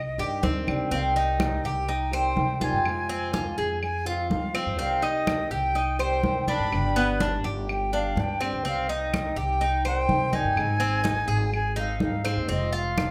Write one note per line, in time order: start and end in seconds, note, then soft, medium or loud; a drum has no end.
0.00 0.17 C2 medium
0.00 0.67 D#5 loud
0.18 0.42 G2 loud
0.18 0.42 D#3 medium
0.18 0.43 G3 medium
0.18 0.43 D4 medium
0.18 0.42 G4 medium
0.18 0.43 G4 medium
0.18 high conga soft
0.43 0.65 D2 medium
0.43 0.67 D#3 soft
0.43 0.67 G3 soft
0.43 0.90 C4 medium
0.43 0.67 D4 medium
0.43 0.66 G4 soft
0.43 high conga medium
0.67 0.89 C2 medium
0.67 0.91 D#3 medium
0.67 0.91 G3 medium
0.67 0.91 D4 medium
0.67 0.91 G4 medium
0.67 high conga medium
0.67 claves medium
0.91 1.60 C2 loud
0.91 1.87 C3 medium
0.91 1.87 D#3 medium
0.91 1.87 G3 medium
0.91 1.15 C4 medium
0.91 1.88 C4 medium
0.91 1.87 G4 medium
0.91 0.99 F5 medium
0.91 high conga soft
1.16 1.63 D#4 medium
1.16 1.67 D#5 medium
1.16 high conga soft
1.40 high conga medium
1.40 claves medium
1.64 2.33 C2 medium
1.64 1.88 G4 medium
1.64 2.13 G5 medium
1.88 2.12 D#4 medium
1.88 muted steel-string acoustic guitar stroke medium
1.88 high conga soft
2.11 2.34 D#3 medium
2.11 2.35 G3 medium
2.11 2.36 C4 medium
2.11 2.35 G4 medium
2.11 2.60 C5 medium
2.11 2.58 G5 loud
2.11 high conga soft
2.11 claves medium
2.35 2.71 C3 medium
2.35 2.59 D#3 medium
2.35 2.60 G3 medium
2.35 2.60 C4 medium
2.35 2.59 G4 medium
2.35 high conga medium
2.60 2.85 D#3 medium
2.60 2.84 G3 medium
2.60 2.84 C4 medium
2.60 3.08 F4 medium
2.60 2.84 G4 medium
2.60 3.79 G#5 loud
2.60 high conga medium
2.73 2.85 G2 medium
2.84 3.54 F2 medium
2.84 3.80 C3 medium
2.84 3.81 F3 medium
2.84 3.81 G#3 medium
2.84 3.82 C4 medium
2.84 3.82 F4 medium
2.84 high conga soft
2.84 claves medium
3.09 3.33 C4 medium
3.09 high conga soft
3.33 3.57 F4 medium
3.33 high conga medium
3.58 4.27 F2 medium
3.58 4.05 G#4 medium
3.58 high conga soft
3.82 4.05 G#5 loud
3.82 muted steel-string acoustic guitar stroke medium
3.82 high conga soft
3.82 claves medium
4.05 4.28 F3 medium
4.05 4.29 G#3 medium
4.05 4.30 C4 medium
4.05 4.29 F4 medium
4.05 4.53 F4 medium
4.05 4.30 F5 medium
4.05 high conga soft
4.30 4.53 F3 soft
4.30 4.65 F3 medium
4.30 4.54 G#3 medium
4.30 4.53 C4 soft
4.30 4.53 F4 medium
4.30 4.65 F5 medium
4.30 high conga medium
4.54 4.77 F3 medium
4.54 4.78 G#3 medium
4.54 4.78 C4 medium
4.54 4.78 F4 medium
4.54 claves medium
4.66 4.78 G2 medium
4.77 5.47 C2 medium
4.77 5.73 C3 medium
4.77 5.74 D#3 medium
4.77 5.75 G3 medium
4.77 5.02 C4 medium
4.77 5.74 C4 medium
4.77 5.76 G4 medium
4.77 5.05 F5 loud
4.77 high conga soft
5.02 5.50 D#4 medium
5.02 5.52 D#5 loud
5.02 high conga soft
5.27 high conga medium
5.27 claves medium
5.50 6.20 C2 medium
5.50 5.75 G4 medium
5.50 5.97 G5 loud
5.75 5.99 D#4 medium
5.75 muted steel-string acoustic guitar stroke medium
5.75 high conga soft
5.99 6.22 D#3 medium
5.99 6.23 G3 medium
5.99 6.23 C4 medium
5.99 6.23 G4 medium
5.99 6.47 C5 medium
5.99 6.45 G5 loud
5.99 high conga soft
5.99 claves medium
6.23 6.58 C3 medium
6.23 6.47 G3 soft
6.23 6.47 C4 medium
6.23 6.46 G4 medium
6.23 high conga medium
6.48 6.71 D#3 medium
6.48 6.71 G3 medium
6.48 6.71 C4 medium
6.48 6.95 D4 medium
6.48 6.71 G4 medium
6.48 7.38 B5 loud
6.48 high conga medium
6.59 6.74 G2 medium
6.70 7.41 G1 medium
6.70 7.67 D3 medium
6.70 7.68 G3 medium
6.70 7.68 B3 medium
6.70 7.68 D4 medium
6.70 7.69 G4 medium
6.70 high conga soft
6.70 claves medium
6.96 7.20 B3 medium
6.96 high conga soft
7.20 7.44 D4 medium
7.20 high conga medium
7.44 8.13 G1 medium
7.44 7.91 G4 medium
7.44 high conga soft
7.68 7.96 G5 medium
7.68 muted steel-string acoustic guitar stroke medium
7.68 high conga soft
7.68 claves medium
7.92 8.15 G3 medium
7.92 8.16 B3 medium
7.92 8.16 D4 medium
7.92 8.40 D4 medium
7.92 8.15 G4 medium
7.92 8.21 F5 medium
7.92 high conga soft
8.16 8.51 G2 medium
8.16 8.40 G3 soft
8.16 8.40 B3 medium
8.16 8.40 D4 soft
8.16 8.39 G4 medium
8.16 8.54 G5 loud
8.16 high conga medium
8.40 8.65 G3 medium
8.40 8.65 B3 medium
8.40 8.64 C4 medium
8.40 8.64 D4 medium
8.40 8.64 G4 medium
8.40 claves medium
8.52 8.64 D2 medium
8.64 9.33 C2 medium
8.64 9.60 C3 medium
8.64 9.60 D#3 medium
8.64 9.60 G3 medium
8.64 8.88 C4 medium
8.64 9.61 C4 medium
8.64 9.61 G4 medium
8.64 8.90 F5 loud
8.64 high conga soft
8.89 9.36 D#4 medium
8.89 9.39 D#5 loud
8.89 high conga soft
9.14 high conga medium
9.14 claves medium
9.36 10.05 C2 medium
9.36 9.60 G4 medium
9.36 9.85 G5 loud
9.61 9.85 D#4 medium
9.61 muted steel-string acoustic guitar stroke medium
9.61 high conga soft
9.84 10.07 D#3 medium
9.84 10.08 G3 medium
9.84 10.09 C4 medium
9.84 10.08 G4 medium
9.84 10.32 C5 medium
9.84 10.36 G5 loud
9.84 high conga soft
9.84 claves medium
10.08 10.43 C3 medium
10.08 10.32 D#3 soft
10.08 10.33 G3 medium
10.08 10.32 C4 soft
10.08 10.31 G4 medium
10.08 high conga medium
10.33 10.55 D#3 medium
10.33 10.57 G3 medium
10.33 10.56 C4 medium
10.33 10.79 D#4 medium
10.33 10.56 G4 medium
10.33 11.53 G#5 loud
10.33 high conga medium
10.44 10.58 G2 medium
10.56 11.25 G#1 medium
10.56 11.52 D#3 medium
10.56 11.53 G#3 medium
10.56 11.53 C4 medium
10.56 11.52 D#4 medium
10.56 11.54 G#4 medium
10.56 high conga soft
10.56 claves medium
10.80 11.03 C4 medium
10.80 high conga soft
11.04 11.28 D#4 medium
11.04 high conga medium
11.28 11.97 G#1 medium
11.28 11.75 G#4 medium
11.28 high conga soft
11.53 11.76 G#5 loud
11.53 muted steel-string acoustic guitar stroke medium
11.53 high conga soft
11.53 claves medium
11.76 12.00 G#3 medium
11.76 12.01 C4 medium
11.76 12.24 D#4 medium
11.76 12.00 D#4 medium
11.76 12.00 G#4 medium
11.76 12.00 F5 medium
11.76 high conga soft
12.00 12.35 G#2 medium
12.00 12.25 G#3 soft
12.00 12.25 C4 medium
12.00 12.24 D#4 soft
12.00 12.24 G#4 medium
12.00 12.36 F5 medium
12.00 high conga medium
12.25 12.49 G#3 medium
12.25 12.47 C4 medium
12.25 12.49 C4 medium
12.25 12.49 D#4 medium
12.25 12.48 G#4 medium
12.25 claves medium
12.36 12.50 D#2 medium
12.48 13.11 F1 medium
12.48 13.11 C3 medium
12.48 13.11 F3 medium
12.48 13.11 G#3 medium
12.48 12.72 C4 medium
12.48 13.11 C4 medium
12.48 13.11 F4 medium
12.48 12.73 D#5 medium
12.48 high conga soft
12.73 13.11 F4 medium
12.73 13.11 F5 loud
12.73 high conga soft
12.98 high conga medium
12.98 claves medium